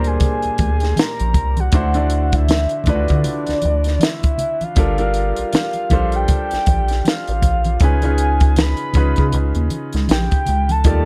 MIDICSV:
0, 0, Header, 1, 6, 480
1, 0, Start_track
1, 0, Tempo, 759494
1, 1093, Time_signature, 4, 2, 24, 8
1, 6984, End_track
2, 0, Start_track
2, 0, Title_t, "Soft synth lead"
2, 0, Program_c, 0, 80
2, 45, Note_on_c, 0, 80, 104
2, 631, Note_on_c, 0, 82, 99
2, 640, Note_off_c, 0, 80, 0
2, 1009, Note_on_c, 0, 78, 91
2, 1019, Note_off_c, 0, 82, 0
2, 1486, Note_on_c, 0, 76, 95
2, 1495, Note_off_c, 0, 78, 0
2, 1827, Note_on_c, 0, 74, 98
2, 1836, Note_off_c, 0, 76, 0
2, 2548, Note_on_c, 0, 76, 100
2, 2558, Note_off_c, 0, 74, 0
2, 2930, Note_on_c, 0, 77, 101
2, 2940, Note_off_c, 0, 76, 0
2, 3503, Note_off_c, 0, 77, 0
2, 3512, Note_on_c, 0, 77, 106
2, 3890, Note_on_c, 0, 79, 107
2, 3899, Note_off_c, 0, 77, 0
2, 4463, Note_off_c, 0, 79, 0
2, 4480, Note_on_c, 0, 77, 98
2, 4922, Note_off_c, 0, 77, 0
2, 4958, Note_on_c, 0, 80, 108
2, 5442, Note_on_c, 0, 83, 102
2, 5452, Note_off_c, 0, 80, 0
2, 5908, Note_off_c, 0, 83, 0
2, 6393, Note_on_c, 0, 79, 96
2, 6769, Note_on_c, 0, 81, 98
2, 6779, Note_off_c, 0, 79, 0
2, 6984, Note_off_c, 0, 81, 0
2, 6984, End_track
3, 0, Start_track
3, 0, Title_t, "Grand piano"
3, 0, Program_c, 1, 0
3, 0, Control_c, 1, 64, 127
3, 0, Note_on_c, 1, 46, 78
3, 0, Note_on_c, 1, 55, 69
3, 0, Note_on_c, 1, 58, 67
3, 0, Note_on_c, 1, 62, 69
3, 0, Note_on_c, 1, 67, 64
3, 0, Note_on_c, 1, 70, 77
3, 0, Note_on_c, 1, 72, 84
3, 697, Note_off_c, 1, 46, 0
3, 699, Note_off_c, 1, 58, 0
3, 701, Note_off_c, 1, 62, 0
3, 702, Note_off_c, 1, 55, 0
3, 705, Note_off_c, 1, 72, 0
3, 1094, Note_on_c, 1, 50, 71
3, 1098, Note_on_c, 1, 62, 71
3, 1100, Control_c, 1, 64, 0
3, 1101, Note_off_c, 1, 70, 0
3, 1103, Note_on_c, 1, 64, 66
3, 1105, Note_off_c, 1, 67, 0
3, 1106, Note_on_c, 1, 66, 62
3, 1110, Note_on_c, 1, 72, 83
3, 1195, Control_c, 1, 64, 127
3, 1207, Note_off_c, 1, 50, 0
3, 1209, Note_off_c, 1, 62, 0
3, 1212, Note_off_c, 1, 64, 0
3, 1213, Note_off_c, 1, 66, 0
3, 1215, Note_off_c, 1, 72, 0
3, 1229, Note_on_c, 1, 50, 76
3, 1233, Note_on_c, 1, 62, 68
3, 1237, Note_on_c, 1, 64, 67
3, 1241, Note_on_c, 1, 66, 66
3, 1244, Note_on_c, 1, 74, 78
3, 1723, Note_off_c, 1, 50, 0
3, 1725, Note_off_c, 1, 62, 0
3, 1727, Note_off_c, 1, 64, 0
3, 1729, Note_off_c, 1, 66, 0
3, 1730, Note_off_c, 1, 74, 0
3, 1812, Note_on_c, 1, 50, 79
3, 1816, Note_on_c, 1, 62, 72
3, 1821, Note_on_c, 1, 64, 67
3, 1824, Note_on_c, 1, 65, 56
3, 1827, Note_on_c, 1, 71, 83
3, 1864, Note_on_c, 1, 66, 68
3, 1866, Note_off_c, 1, 65, 0
3, 2616, Note_off_c, 1, 50, 0
3, 2618, Note_off_c, 1, 62, 0
3, 2620, Note_off_c, 1, 64, 0
3, 2623, Note_off_c, 1, 71, 0
3, 2642, Note_off_c, 1, 66, 0
3, 3012, Note_on_c, 1, 55, 75
3, 3016, Note_on_c, 1, 62, 71
3, 3020, Note_on_c, 1, 65, 73
3, 3021, Control_c, 1, 64, 0
3, 3024, Note_on_c, 1, 69, 72
3, 3028, Note_on_c, 1, 70, 82
3, 3126, Note_off_c, 1, 55, 0
3, 3128, Control_c, 1, 64, 127
3, 3129, Note_off_c, 1, 62, 0
3, 3131, Note_off_c, 1, 65, 0
3, 3133, Note_off_c, 1, 69, 0
3, 3134, Note_off_c, 1, 70, 0
3, 3148, Note_on_c, 1, 55, 71
3, 3153, Note_on_c, 1, 62, 64
3, 3158, Note_on_c, 1, 65, 67
3, 3160, Note_on_c, 1, 69, 66
3, 3163, Note_on_c, 1, 70, 83
3, 3643, Note_off_c, 1, 55, 0
3, 3645, Note_off_c, 1, 62, 0
3, 3647, Note_off_c, 1, 65, 0
3, 3648, Note_off_c, 1, 69, 0
3, 3650, Note_off_c, 1, 70, 0
3, 3733, Note_on_c, 1, 55, 81
3, 3736, Note_on_c, 1, 62, 72
3, 3741, Note_on_c, 1, 65, 70
3, 3745, Note_on_c, 1, 69, 76
3, 3749, Note_on_c, 1, 72, 84
3, 4536, Note_off_c, 1, 55, 0
3, 4538, Note_off_c, 1, 62, 0
3, 4540, Note_off_c, 1, 65, 0
3, 4542, Note_off_c, 1, 69, 0
3, 4544, Note_off_c, 1, 72, 0
3, 4936, Note_on_c, 1, 49, 75
3, 4940, Control_c, 1, 64, 0
3, 4940, Note_on_c, 1, 61, 68
3, 4944, Note_on_c, 1, 63, 63
3, 4947, Note_on_c, 1, 65, 67
3, 4952, Note_on_c, 1, 71, 80
3, 5049, Note_off_c, 1, 49, 0
3, 5049, Control_c, 1, 64, 127
3, 5050, Note_off_c, 1, 61, 0
3, 5052, Note_off_c, 1, 63, 0
3, 5054, Note_off_c, 1, 65, 0
3, 5056, Note_off_c, 1, 71, 0
3, 5071, Note_on_c, 1, 49, 72
3, 5076, Note_on_c, 1, 61, 69
3, 5079, Note_on_c, 1, 63, 70
3, 5084, Note_on_c, 1, 65, 67
3, 5088, Note_on_c, 1, 71, 75
3, 5564, Note_off_c, 1, 49, 0
3, 5566, Note_off_c, 1, 61, 0
3, 5568, Note_off_c, 1, 63, 0
3, 5570, Note_off_c, 1, 65, 0
3, 5572, Note_off_c, 1, 71, 0
3, 5656, Note_on_c, 1, 49, 79
3, 5659, Note_on_c, 1, 61, 67
3, 5662, Note_on_c, 1, 63, 70
3, 5667, Note_on_c, 1, 65, 69
3, 5670, Note_on_c, 1, 71, 85
3, 6457, Note_off_c, 1, 49, 0
3, 6459, Note_off_c, 1, 61, 0
3, 6460, Note_off_c, 1, 63, 0
3, 6463, Note_off_c, 1, 65, 0
3, 6464, Note_off_c, 1, 71, 0
3, 6856, Note_on_c, 1, 51, 72
3, 6858, Note_on_c, 1, 63, 62
3, 6861, Note_on_c, 1, 65, 69
3, 6862, Control_c, 1, 64, 0
3, 6865, Note_on_c, 1, 67, 70
3, 6869, Note_on_c, 1, 69, 65
3, 6872, Note_on_c, 1, 74, 82
3, 6968, Note_off_c, 1, 51, 0
3, 6970, Note_off_c, 1, 63, 0
3, 6971, Note_off_c, 1, 65, 0
3, 6973, Note_off_c, 1, 67, 0
3, 6975, Note_off_c, 1, 69, 0
3, 6976, Note_off_c, 1, 74, 0
3, 6982, Control_c, 1, 64, 127
3, 6984, End_track
4, 0, Start_track
4, 0, Title_t, "Tonewheel organ"
4, 0, Program_c, 2, 16
4, 6855, Note_on_c, 2, 63, 75
4, 6857, Note_on_c, 2, 74, 67
4, 6858, Note_on_c, 2, 55, 68
4, 6858, Note_on_c, 2, 57, 78
4, 6859, Note_on_c, 2, 65, 66
4, 6984, Note_off_c, 2, 55, 0
4, 6984, Note_off_c, 2, 57, 0
4, 6984, Note_off_c, 2, 63, 0
4, 6984, Note_off_c, 2, 65, 0
4, 6984, Note_off_c, 2, 74, 0
4, 6984, End_track
5, 0, Start_track
5, 0, Title_t, "Analog synth bass"
5, 0, Program_c, 3, 38
5, 0, Note_on_c, 3, 38, 89
5, 117, Note_off_c, 3, 38, 0
5, 282, Note_on_c, 3, 38, 49
5, 320, Note_off_c, 3, 38, 0
5, 378, Note_on_c, 3, 38, 86
5, 595, Note_off_c, 3, 38, 0
5, 762, Note_on_c, 3, 34, 98
5, 856, Note_on_c, 3, 36, 95
5, 865, Note_off_c, 3, 34, 0
5, 1074, Note_off_c, 3, 36, 0
5, 1097, Note_on_c, 3, 38, 112
5, 1688, Note_off_c, 3, 38, 0
5, 1820, Note_on_c, 3, 38, 92
5, 1943, Note_off_c, 3, 38, 0
5, 1965, Note_on_c, 3, 50, 94
5, 2052, Note_off_c, 3, 50, 0
5, 2204, Note_on_c, 3, 38, 50
5, 2242, Note_off_c, 3, 38, 0
5, 2306, Note_on_c, 3, 38, 88
5, 2520, Note_off_c, 3, 38, 0
5, 3018, Note_on_c, 3, 31, 102
5, 3369, Note_off_c, 3, 31, 0
5, 3404, Note_on_c, 3, 34, 53
5, 3442, Note_off_c, 3, 34, 0
5, 3743, Note_on_c, 3, 34, 90
5, 3958, Note_off_c, 3, 34, 0
5, 4126, Note_on_c, 3, 34, 46
5, 4163, Note_off_c, 3, 34, 0
5, 4221, Note_on_c, 3, 34, 89
5, 4437, Note_off_c, 3, 34, 0
5, 4604, Note_on_c, 3, 33, 86
5, 4692, Note_off_c, 3, 33, 0
5, 4699, Note_on_c, 3, 34, 89
5, 4916, Note_off_c, 3, 34, 0
5, 4939, Note_on_c, 3, 37, 98
5, 5529, Note_off_c, 3, 37, 0
5, 5663, Note_on_c, 3, 37, 100
5, 5784, Note_off_c, 3, 37, 0
5, 5809, Note_on_c, 3, 49, 96
5, 5894, Note_off_c, 3, 49, 0
5, 5902, Note_on_c, 3, 37, 103
5, 6024, Note_off_c, 3, 37, 0
5, 6040, Note_on_c, 3, 39, 88
5, 6130, Note_off_c, 3, 39, 0
5, 6283, Note_on_c, 3, 37, 86
5, 6371, Note_off_c, 3, 37, 0
5, 6384, Note_on_c, 3, 34, 99
5, 6505, Note_off_c, 3, 34, 0
5, 6625, Note_on_c, 3, 37, 96
5, 6861, Note_on_c, 3, 39, 107
5, 6871, Note_off_c, 3, 37, 0
5, 6984, Note_off_c, 3, 39, 0
5, 6984, End_track
6, 0, Start_track
6, 0, Title_t, "Drums"
6, 27, Note_on_c, 9, 42, 43
6, 90, Note_off_c, 9, 42, 0
6, 126, Note_on_c, 9, 42, 77
6, 130, Note_on_c, 9, 36, 97
6, 136, Note_on_c, 9, 64, 67
6, 190, Note_off_c, 9, 42, 0
6, 194, Note_off_c, 9, 36, 0
6, 200, Note_off_c, 9, 64, 0
6, 268, Note_on_c, 9, 42, 44
6, 332, Note_off_c, 9, 42, 0
6, 367, Note_on_c, 9, 42, 64
6, 373, Note_on_c, 9, 36, 86
6, 376, Note_on_c, 9, 63, 61
6, 430, Note_off_c, 9, 42, 0
6, 436, Note_off_c, 9, 36, 0
6, 439, Note_off_c, 9, 63, 0
6, 507, Note_on_c, 9, 42, 46
6, 525, Note_on_c, 9, 38, 35
6, 570, Note_off_c, 9, 42, 0
6, 589, Note_off_c, 9, 38, 0
6, 608, Note_on_c, 9, 62, 33
6, 608, Note_on_c, 9, 63, 71
6, 613, Note_on_c, 9, 42, 78
6, 628, Note_on_c, 9, 38, 121
6, 672, Note_off_c, 9, 62, 0
6, 672, Note_off_c, 9, 63, 0
6, 676, Note_off_c, 9, 42, 0
6, 692, Note_off_c, 9, 38, 0
6, 755, Note_on_c, 9, 42, 53
6, 818, Note_off_c, 9, 42, 0
6, 844, Note_on_c, 9, 64, 63
6, 849, Note_on_c, 9, 36, 93
6, 850, Note_on_c, 9, 42, 68
6, 907, Note_off_c, 9, 64, 0
6, 912, Note_off_c, 9, 36, 0
6, 913, Note_off_c, 9, 42, 0
6, 991, Note_on_c, 9, 42, 47
6, 992, Note_on_c, 9, 63, 67
6, 1054, Note_off_c, 9, 42, 0
6, 1055, Note_off_c, 9, 63, 0
6, 1084, Note_on_c, 9, 62, 33
6, 1085, Note_on_c, 9, 42, 89
6, 1091, Note_on_c, 9, 36, 114
6, 1147, Note_off_c, 9, 62, 0
6, 1149, Note_off_c, 9, 42, 0
6, 1154, Note_off_c, 9, 36, 0
6, 1220, Note_on_c, 9, 62, 33
6, 1227, Note_on_c, 9, 42, 50
6, 1283, Note_off_c, 9, 62, 0
6, 1290, Note_off_c, 9, 42, 0
6, 1326, Note_on_c, 9, 42, 66
6, 1389, Note_off_c, 9, 42, 0
6, 1468, Note_on_c, 9, 42, 55
6, 1472, Note_on_c, 9, 36, 108
6, 1532, Note_off_c, 9, 42, 0
6, 1535, Note_off_c, 9, 36, 0
6, 1571, Note_on_c, 9, 42, 89
6, 1572, Note_on_c, 9, 62, 33
6, 1572, Note_on_c, 9, 63, 66
6, 1584, Note_on_c, 9, 38, 125
6, 1634, Note_off_c, 9, 42, 0
6, 1635, Note_off_c, 9, 62, 0
6, 1635, Note_off_c, 9, 63, 0
6, 1648, Note_off_c, 9, 38, 0
6, 1702, Note_on_c, 9, 42, 45
6, 1765, Note_off_c, 9, 42, 0
6, 1794, Note_on_c, 9, 63, 73
6, 1794, Note_on_c, 9, 64, 70
6, 1806, Note_on_c, 9, 42, 77
6, 1814, Note_on_c, 9, 36, 97
6, 1857, Note_off_c, 9, 63, 0
6, 1857, Note_off_c, 9, 64, 0
6, 1870, Note_off_c, 9, 42, 0
6, 1877, Note_off_c, 9, 36, 0
6, 1948, Note_on_c, 9, 42, 45
6, 1960, Note_on_c, 9, 36, 87
6, 2011, Note_off_c, 9, 42, 0
6, 2023, Note_off_c, 9, 36, 0
6, 2049, Note_on_c, 9, 42, 84
6, 2049, Note_on_c, 9, 64, 77
6, 2112, Note_off_c, 9, 42, 0
6, 2112, Note_off_c, 9, 64, 0
6, 2188, Note_on_c, 9, 62, 32
6, 2191, Note_on_c, 9, 42, 46
6, 2207, Note_on_c, 9, 38, 39
6, 2251, Note_off_c, 9, 62, 0
6, 2254, Note_off_c, 9, 42, 0
6, 2270, Note_off_c, 9, 38, 0
6, 2285, Note_on_c, 9, 42, 62
6, 2287, Note_on_c, 9, 63, 63
6, 2349, Note_off_c, 9, 42, 0
6, 2351, Note_off_c, 9, 63, 0
6, 2428, Note_on_c, 9, 42, 45
6, 2446, Note_on_c, 9, 38, 35
6, 2491, Note_off_c, 9, 42, 0
6, 2509, Note_off_c, 9, 38, 0
6, 2525, Note_on_c, 9, 62, 35
6, 2525, Note_on_c, 9, 63, 77
6, 2533, Note_on_c, 9, 42, 85
6, 2548, Note_on_c, 9, 38, 116
6, 2589, Note_off_c, 9, 62, 0
6, 2589, Note_off_c, 9, 63, 0
6, 2596, Note_off_c, 9, 42, 0
6, 2611, Note_off_c, 9, 38, 0
6, 2666, Note_on_c, 9, 62, 33
6, 2675, Note_on_c, 9, 42, 50
6, 2679, Note_on_c, 9, 36, 96
6, 2729, Note_off_c, 9, 62, 0
6, 2738, Note_off_c, 9, 42, 0
6, 2742, Note_off_c, 9, 36, 0
6, 2767, Note_on_c, 9, 64, 63
6, 2773, Note_on_c, 9, 42, 67
6, 2830, Note_off_c, 9, 64, 0
6, 2836, Note_off_c, 9, 42, 0
6, 2913, Note_on_c, 9, 42, 46
6, 2915, Note_on_c, 9, 63, 65
6, 2976, Note_off_c, 9, 42, 0
6, 2978, Note_off_c, 9, 63, 0
6, 3003, Note_on_c, 9, 62, 34
6, 3008, Note_on_c, 9, 42, 85
6, 3012, Note_on_c, 9, 36, 110
6, 3066, Note_off_c, 9, 62, 0
6, 3071, Note_off_c, 9, 42, 0
6, 3076, Note_off_c, 9, 36, 0
6, 3148, Note_on_c, 9, 42, 47
6, 3211, Note_off_c, 9, 42, 0
6, 3247, Note_on_c, 9, 42, 67
6, 3310, Note_off_c, 9, 42, 0
6, 3390, Note_on_c, 9, 42, 57
6, 3454, Note_off_c, 9, 42, 0
6, 3492, Note_on_c, 9, 42, 95
6, 3498, Note_on_c, 9, 62, 33
6, 3498, Note_on_c, 9, 63, 70
6, 3506, Note_on_c, 9, 38, 115
6, 3556, Note_off_c, 9, 42, 0
6, 3561, Note_off_c, 9, 62, 0
6, 3561, Note_off_c, 9, 63, 0
6, 3570, Note_off_c, 9, 38, 0
6, 3622, Note_on_c, 9, 42, 48
6, 3629, Note_on_c, 9, 62, 30
6, 3685, Note_off_c, 9, 42, 0
6, 3692, Note_off_c, 9, 62, 0
6, 3728, Note_on_c, 9, 63, 68
6, 3728, Note_on_c, 9, 64, 70
6, 3730, Note_on_c, 9, 42, 78
6, 3736, Note_on_c, 9, 36, 86
6, 3791, Note_off_c, 9, 63, 0
6, 3791, Note_off_c, 9, 64, 0
6, 3793, Note_off_c, 9, 42, 0
6, 3799, Note_off_c, 9, 36, 0
6, 3868, Note_on_c, 9, 42, 44
6, 3931, Note_off_c, 9, 42, 0
6, 3969, Note_on_c, 9, 42, 82
6, 3973, Note_on_c, 9, 36, 98
6, 3976, Note_on_c, 9, 62, 34
6, 3976, Note_on_c, 9, 64, 69
6, 4033, Note_off_c, 9, 42, 0
6, 4036, Note_off_c, 9, 36, 0
6, 4039, Note_off_c, 9, 62, 0
6, 4039, Note_off_c, 9, 64, 0
6, 4113, Note_on_c, 9, 42, 48
6, 4129, Note_on_c, 9, 38, 36
6, 4177, Note_off_c, 9, 42, 0
6, 4193, Note_off_c, 9, 38, 0
6, 4211, Note_on_c, 9, 42, 65
6, 4216, Note_on_c, 9, 36, 87
6, 4218, Note_on_c, 9, 63, 59
6, 4274, Note_off_c, 9, 42, 0
6, 4279, Note_off_c, 9, 36, 0
6, 4281, Note_off_c, 9, 63, 0
6, 4351, Note_on_c, 9, 42, 47
6, 4369, Note_on_c, 9, 38, 35
6, 4414, Note_off_c, 9, 42, 0
6, 4432, Note_off_c, 9, 38, 0
6, 4454, Note_on_c, 9, 63, 69
6, 4459, Note_on_c, 9, 42, 80
6, 4474, Note_on_c, 9, 38, 114
6, 4517, Note_off_c, 9, 63, 0
6, 4522, Note_off_c, 9, 42, 0
6, 4537, Note_off_c, 9, 38, 0
6, 4598, Note_on_c, 9, 42, 52
6, 4661, Note_off_c, 9, 42, 0
6, 4689, Note_on_c, 9, 64, 61
6, 4692, Note_on_c, 9, 36, 86
6, 4693, Note_on_c, 9, 42, 69
6, 4752, Note_off_c, 9, 64, 0
6, 4755, Note_off_c, 9, 36, 0
6, 4756, Note_off_c, 9, 42, 0
6, 4832, Note_on_c, 9, 42, 49
6, 4836, Note_on_c, 9, 63, 70
6, 4895, Note_off_c, 9, 42, 0
6, 4899, Note_off_c, 9, 63, 0
6, 4927, Note_on_c, 9, 62, 34
6, 4928, Note_on_c, 9, 42, 84
6, 4934, Note_on_c, 9, 36, 116
6, 4990, Note_off_c, 9, 62, 0
6, 4991, Note_off_c, 9, 42, 0
6, 4997, Note_off_c, 9, 36, 0
6, 5064, Note_on_c, 9, 62, 31
6, 5068, Note_on_c, 9, 42, 47
6, 5127, Note_off_c, 9, 62, 0
6, 5131, Note_off_c, 9, 42, 0
6, 5169, Note_on_c, 9, 42, 67
6, 5232, Note_off_c, 9, 42, 0
6, 5311, Note_on_c, 9, 42, 60
6, 5315, Note_on_c, 9, 36, 97
6, 5374, Note_off_c, 9, 42, 0
6, 5378, Note_off_c, 9, 36, 0
6, 5412, Note_on_c, 9, 42, 91
6, 5419, Note_on_c, 9, 62, 32
6, 5419, Note_on_c, 9, 63, 73
6, 5426, Note_on_c, 9, 38, 120
6, 5475, Note_off_c, 9, 42, 0
6, 5482, Note_off_c, 9, 62, 0
6, 5482, Note_off_c, 9, 63, 0
6, 5489, Note_off_c, 9, 38, 0
6, 5542, Note_on_c, 9, 42, 48
6, 5605, Note_off_c, 9, 42, 0
6, 5647, Note_on_c, 9, 63, 70
6, 5647, Note_on_c, 9, 64, 66
6, 5649, Note_on_c, 9, 42, 75
6, 5657, Note_on_c, 9, 36, 91
6, 5710, Note_off_c, 9, 63, 0
6, 5710, Note_off_c, 9, 64, 0
6, 5712, Note_off_c, 9, 42, 0
6, 5720, Note_off_c, 9, 36, 0
6, 5789, Note_on_c, 9, 42, 43
6, 5802, Note_on_c, 9, 36, 92
6, 5852, Note_off_c, 9, 42, 0
6, 5865, Note_off_c, 9, 36, 0
6, 5893, Note_on_c, 9, 42, 75
6, 5896, Note_on_c, 9, 62, 33
6, 5896, Note_on_c, 9, 64, 70
6, 5956, Note_off_c, 9, 42, 0
6, 5960, Note_off_c, 9, 62, 0
6, 5960, Note_off_c, 9, 64, 0
6, 6034, Note_on_c, 9, 42, 47
6, 6036, Note_on_c, 9, 62, 33
6, 6097, Note_off_c, 9, 42, 0
6, 6099, Note_off_c, 9, 62, 0
6, 6133, Note_on_c, 9, 42, 63
6, 6136, Note_on_c, 9, 63, 59
6, 6196, Note_off_c, 9, 42, 0
6, 6199, Note_off_c, 9, 63, 0
6, 6273, Note_on_c, 9, 42, 49
6, 6291, Note_on_c, 9, 38, 36
6, 6336, Note_off_c, 9, 42, 0
6, 6354, Note_off_c, 9, 38, 0
6, 6369, Note_on_c, 9, 63, 74
6, 6376, Note_on_c, 9, 42, 82
6, 6392, Note_on_c, 9, 38, 125
6, 6433, Note_off_c, 9, 63, 0
6, 6440, Note_off_c, 9, 42, 0
6, 6455, Note_off_c, 9, 38, 0
6, 6519, Note_on_c, 9, 42, 53
6, 6522, Note_on_c, 9, 36, 89
6, 6582, Note_off_c, 9, 42, 0
6, 6585, Note_off_c, 9, 36, 0
6, 6610, Note_on_c, 9, 64, 60
6, 6614, Note_on_c, 9, 42, 65
6, 6673, Note_off_c, 9, 64, 0
6, 6677, Note_off_c, 9, 42, 0
6, 6757, Note_on_c, 9, 42, 48
6, 6757, Note_on_c, 9, 63, 66
6, 6820, Note_off_c, 9, 42, 0
6, 6820, Note_off_c, 9, 63, 0
6, 6851, Note_on_c, 9, 62, 33
6, 6852, Note_on_c, 9, 42, 85
6, 6855, Note_on_c, 9, 36, 110
6, 6914, Note_off_c, 9, 62, 0
6, 6915, Note_off_c, 9, 42, 0
6, 6918, Note_off_c, 9, 36, 0
6, 6984, End_track
0, 0, End_of_file